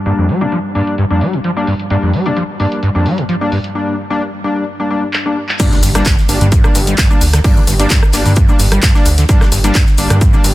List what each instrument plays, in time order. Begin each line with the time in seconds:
Already playing: ambient pad G2 G3
0.06 acid bass G2, analog polysynth G3 A#3 D4, closed hi-hat
0.18 acid bass F2
0.29 acid bass G3, open hi-hat
0.41 acid bass A#2, analog polysynth G3 A#3 D4, closed hi-hat
0.52 acid bass F3, closed hi-hat
0.75 acid bass G2, analog polysynth G3 A#3 D4, open hi-hat
0.87 closed hi-hat
0.98 acid bass G2, closed hi-hat
1.10 acid bass F2, analog polysynth G3 A#3 D4
1.21 acid bass G3, open hi-hat
1.33 acid bass A#2, closed hi-hat
1.44 acid bass F3, closed hi-hat
1.57 analog polysynth G3 A#3 D4
1.67 acid bass G2, open hi-hat
1.79 closed hi-hat
1.90 acid bass G2, analog polysynth G3 A#3 D4, closed hi-hat
2.03 acid bass F2
2.13 acid bass G3, open hi-hat
2.26 acid bass A#2, analog polysynth G3 A#3 D4, closed hi-hat
2.37 acid bass F3, closed hi-hat
2.60 acid bass G2, analog polysynth G3 A#3 D4, open hi-hat
2.72 closed hi-hat
2.83 acid bass G2, closed hi-hat
2.95 acid bass F2, analog polysynth G3 A#3 D4
3.06 acid bass G3, open hi-hat
3.18 acid bass A#2, closed hi-hat
3.29 acid bass F3, closed hi-hat
3.41 analog polysynth G3 A#3 D4
3.52 acid bass G2, open hi-hat
3.64 closed hi-hat
3.75 analog polysynth G3 A#3 D4
4.10 analog polysynth G3 A#3 D4
4.44 analog polysynth G3 A#3 D4
4.80 analog polysynth G3 A#3 D4
4.90 analog polysynth G3 A#3 D4
5.13 clap
5.26 analog polysynth G3 A#3 D4
5.49 clap
5.60 acid bass G2, analog polysynth G3 A#3 D4, kick, closed hi-hat, crash, impact, shaker
5.71 acid bass G3, snare, shaker
5.83 analog synth bass G1, acid bass G2, open hi-hat, shaker
5.95 analog polysynth G3 A#3 D4, acid bass G3, cross-stick, closed hi-hat, shaker
6.06 acid bass G2, kick, snare, clap, closed hi-hat, shaker
6.18 snare, shaker
6.29 analog synth bass G1, analog polysynth G3 A#3 D4, open hi-hat, shaker
6.41 analog synth bass G2, acid bass D3, closed hi-hat, shaker
6.52 acid bass G2, kick, closed hi-hat, shaker
6.64 analog polysynth G3 A#3 D4, acid bass G3, cross-stick, shaker
6.75 analog synth bass G1, acid bass G2, open hi-hat, shaker
6.87 acid bass G3, closed hi-hat, shaker
6.97 acid bass G2, kick, snare, clap, closed hi-hat, shaker
7.10 analog polysynth G3 A#3 D4, shaker
7.21 analog synth bass D2, open hi-hat, shaker
7.33 acid bass D3, cross-stick, snare, closed hi-hat, shaker
7.44 acid bass G2, analog polysynth G3 A#3 D4, kick, closed hi-hat, open hi-hat, shaker
7.56 acid bass G3, shaker
7.67 analog synth bass G1, acid bass G2, open hi-hat, shaker
7.79 analog polysynth G3 A#3 D4, acid bass G3, closed hi-hat, shaker
7.90 acid bass G2, kick, snare, clap, closed hi-hat, shaker
8.03 cross-stick, shaker
8.13 analog synth bass G1, analog polysynth G3 A#3 D4, snare, clap, open hi-hat, shaker
8.26 analog synth bass G2, acid bass D3, open hi-hat, shaker
8.36 acid bass G2, kick, closed hi-hat, shaker
8.49 analog polysynth G3 A#3 D4, acid bass G3, shaker
8.59 analog synth bass G1, acid bass G2, open hi-hat, shaker
8.72 acid bass G3, cross-stick, closed hi-hat, shaker
8.82 acid bass G2, kick, snare, clap, closed hi-hat, shaker
8.95 analog polysynth G3 A#3 D4, snare, shaker
9.05 analog synth bass D2, open hi-hat, shaker
9.18 acid bass D3, snare, closed hi-hat, shaker
9.29 acid bass G2, analog polysynth G3 A#3 D4, kick, closed hi-hat, shaker
9.41 acid bass G3, cross-stick, snare, shaker
9.52 analog synth bass G1, acid bass G2, open hi-hat, shaker
9.64 analog polysynth G3 A#3 D4, acid bass G3, closed hi-hat, shaker
9.75 acid bass G2, kick, snare, clap, closed hi-hat, shaker
9.86 snare, shaker
9.97 analog synth bass G1, analog polysynth G3 A#3 D4, open hi-hat, shaker
10.10 analog synth bass G2, acid bass D3, cross-stick, closed hi-hat, shaker
10.21 acid bass G2, kick, closed hi-hat, shaker
10.33 analog polysynth G3 A#3 D4, acid bass G3, shaker
10.44 analog synth bass G1, acid bass G2, open hi-hat, shaker